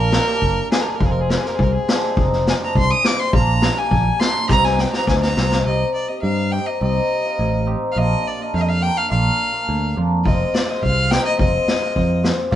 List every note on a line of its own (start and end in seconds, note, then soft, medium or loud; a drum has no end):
0.00 0.18 A#1 medium
0.00 0.71 A#4 loud
0.12 snare medium
0.27 0.49 A#3 medium
0.27 0.49 D4 medium
0.27 0.50 G4 medium
0.42 0.60 F#1 medium
0.42 kick medium
0.71 0.86 A#3 medium
0.71 0.86 D4 medium
0.71 0.86 G4 medium
0.71 0.82 G#4 medium
0.71 snare medium
0.81 0.90 A#4 medium
0.88 0.97 G#4 medium
0.95 1.07 A#4 medium
1.00 1.36 F1 loud
1.00 1.42 G#3 medium
1.00 1.22 C4 medium
1.00 1.22 F4 medium
1.00 kick medium
1.06 1.13 G#4 medium
1.11 1.22 A#4 medium
1.21 1.31 G#4 medium
1.30 1.39 A#4 medium
1.30 snare medium
1.37 1.48 G#4 medium
1.43 1.87 G#3 medium
1.43 1.66 C4 medium
1.43 1.66 G4 medium
1.43 1.57 A#4 medium
1.43 snare soft
1.55 1.65 G#4 medium
1.55 kick medium
1.59 1.77 C2 medium
1.63 1.73 A#4 medium
1.72 2.19 G#4 medium
1.88 2.15 G#3 medium
1.88 2.03 C4 medium
1.88 2.03 D4 medium
1.88 snare medium
2.16 2.52 F1 medium
2.16 2.59 G#3 medium
2.16 2.39 C4 medium
2.16 2.39 D#4 medium
2.16 kick medium
2.33 snare soft
2.47 2.55 G#5 medium
2.47 snare medium
2.60 3.02 G#3 soft
2.60 2.83 C4 soft
2.60 2.83 D4 medium
2.65 2.76 A#5 medium
2.75 2.93 C2 loud
2.75 2.92 C6 loud
2.75 kick medium
2.91 3.07 D#6 loud
3.03 3.39 G#3 medium
3.03 3.19 C4 medium
3.03 3.19 F4 medium
3.03 3.22 D6 medium
3.03 snare medium
3.20 3.34 C6 loud
3.33 3.69 A#1 medium
3.33 3.55 A#3 medium
3.33 3.55 D4 medium
3.33 3.55 F4 medium
3.33 3.79 A#5 medium
3.33 kick medium
3.62 snare medium
3.76 3.98 A#3 medium
3.76 3.99 D4 medium
3.76 3.99 G4 medium
3.76 4.21 G#5 medium
3.91 4.09 A#1 medium
3.91 kick medium
4.19 4.34 A#3 medium
4.19 4.35 D4 medium
4.19 4.35 F4 medium
4.19 4.48 C6 medium
4.19 snare medium
4.48 4.84 C2 loud
4.48 4.71 C4 medium
4.48 4.71 D#4 medium
4.48 4.71 G4 medium
4.48 4.66 A#5 loud
4.48 kick medium
4.48 snare medium
4.64 4.82 G#5 medium
4.64 snare soft
4.78 4.92 G5 medium
4.78 snare medium
4.92 5.14 C4 medium
4.92 5.15 D#4 soft
4.92 5.15 G4 medium
4.92 5.07 A#5 medium
4.92 snare medium
5.07 5.34 D2 medium
5.07 5.15 G#5 medium
5.07 kick medium
5.07 snare medium
5.21 5.62 A#5 medium
5.21 snare medium
5.37 5.63 C2 medium
5.37 5.51 C4 medium
5.37 5.51 D#4 medium
5.37 5.51 A#4 medium
5.37 snare medium
5.51 snare medium
5.65 5.83 C2 medium
5.65 5.87 C4 medium
5.65 5.87 D#4 medium
5.65 5.88 G4 medium
5.65 5.93 D#5 medium
5.94 6.10 D5 medium
6.08 6.31 C4 soft
6.08 6.31 D#4 soft
6.08 6.31 G4 soft
6.08 6.21 D#5 medium
6.22 6.58 G2 medium
6.22 6.53 F5 medium
6.51 6.67 C4 soft
6.51 6.67 D#4 soft
6.51 6.67 G4 medium
6.51 6.68 G5 medium
6.67 6.81 D#5 medium
6.81 6.99 C2 medium
6.81 7.03 C4 medium
6.81 7.03 D#4 medium
6.81 7.03 G4 medium
6.81 7.64 D#5 medium
7.24 7.46 C4 soft
7.24 7.46 D#4 soft
7.24 7.47 F4 medium
7.39 7.74 A1 medium
7.66 7.82 C4 medium
7.66 7.82 D#4 medium
7.66 7.82 G4 medium
7.92 7.99 F5 medium
7.96 8.14 A#1 medium
7.96 8.18 A#3 medium
7.96 8.18 D4 medium
7.96 8.19 F4 medium
7.96 8.29 D#5 medium
8.28 8.43 D5 medium
8.39 8.61 A#3 medium
8.39 8.61 D4 medium
8.39 8.61 F4 medium
8.39 8.55 D#5 medium
8.54 8.89 F2 medium
8.54 8.62 F5 medium
8.61 8.70 D#5 medium
8.69 8.84 F5 medium
8.81 8.96 A#3 medium
8.81 8.97 D4 medium
8.81 8.97 F4 medium
8.81 8.99 G5 medium
8.97 9.10 F5 medium
9.10 9.29 A#1 medium
9.10 9.33 A#3 medium
9.10 9.33 D4 medium
9.10 9.33 F4 medium
9.10 9.93 F5 medium
9.52 9.75 A#3 medium
9.52 9.75 F4 medium
9.69 9.95 D2 medium
9.96 10.23 F2 medium
9.96 10.11 A#3 medium
9.96 10.12 D4 medium
9.96 10.12 F4 medium
10.25 10.43 F1 medium
10.25 10.66 G#3 medium
10.25 10.47 C4 medium
10.25 10.47 F4 medium
10.25 10.56 D#5 medium
10.25 kick medium
10.54 10.71 D5 medium
10.54 snare medium
10.67 11.08 G#3 medium
10.67 10.89 C4 soft
10.67 10.89 F4 medium
10.67 10.82 D#5 medium
10.83 11.17 C2 medium
10.83 11.12 F5 medium
10.83 kick medium
11.10 11.36 G#3 medium
11.10 11.25 C4 medium
11.10 11.25 D#4 medium
11.10 11.25 G5 loud
11.10 snare medium
11.25 11.38 D#5 medium
11.37 11.57 F1 medium
11.37 11.80 G#3 medium
11.37 11.60 C4 medium
11.37 11.60 F4 medium
11.37 12.20 D#5 medium
11.37 kick medium
11.68 snare medium
11.81 12.22 G#3 medium
11.81 12.03 C4 medium
11.81 12.03 F4 medium
11.96 12.30 F2 medium
11.96 kick medium
12.23 12.55 G#3 medium
12.23 12.38 C4 medium
12.23 12.38 F4 medium
12.23 snare medium
12.51 12.55 A#1 medium
12.51 12.55 A#3 medium
12.51 12.55 D4 medium
12.51 12.55 F4 medium
12.51 kick medium